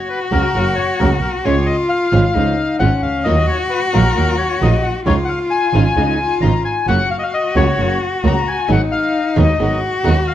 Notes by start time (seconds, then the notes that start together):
Already playing: F#4
0.09 B4
0.31 C#2 C#3 F#3 A#3 C#4 F#4 A#4
0.54 F#1 C#3 F#3 A#3 C#4 F#4
0.75 C#5
0.99 C#2 C#3 F#3 A#3 C#4 F#4 A#4
1.22 B1 A#4
1.45 C#2 C#3 F3 G#3 C#4 F4 C#5
1.66 D#5
1.89 F5
2.12 G#1 C#3 F3 G#3 C#4 F4
2.34 C#2 C#3 F3 G#3 C#4 D#4 F4
2.79 G#1 C#3 F3 G#3 C#4 F4 F#5
3.02 C#2 F5
3.24 D#2 D#3 F#3 A#3 D#4 F4 F#4 D#5
3.47 C#5
3.70 B4
3.93 A#1 D#3 F#3 A#3 D#4 F4 A#4
4.15 D#2 D#3 F#3 A#3 D#4 F4
4.38 C#5
4.61 A#1 D#3 F#3 A#3 D#4 F4 D#5
4.82 F#5
5.06 C#2 C#3 F3 G#3 C#4 D#4 F4 C#5
5.25 F5 F#5
5.50 G#5
5.74 G#1 C#3 F3 G#3 C#4 D#4 F4
5.96 C#2 C#3 F3 G#3 C#4 D#4 F4
6.19 F4
6.41 G#1 C#3 F3 G#3 C#4 D#4 F4 A#5
6.65 G#5
6.86 F#1 C#3 F#3 A#3 C#4 F#4 F#5
7.11 F5
7.19 D#5
7.23 F5
7.34 D#5
7.55 C#2 C#3 F#3 A#3 C#4 F#4 C#5
7.78 F#1 C#3 F#3 A#3 C#4 F#4
8.23 C#2 C#3 F#3 A#3 C#4 F#4 A#5
8.48 G#5
8.68 G#1 D#3 F#3 G#3 B3 D#4 F#4 G#4
8.72 F#5
8.92 F5
9.36 D#2 D#3 F#3 G#3 B3 D#4 F#4 G#4 D#5
9.59 G#1 D#3 F#3 G#3 B3 D#4 F#4 G#4
10.03 D#2 D#3 F#3 G#3 B3 D#4 F#4 G#4 F#5
10.27 F5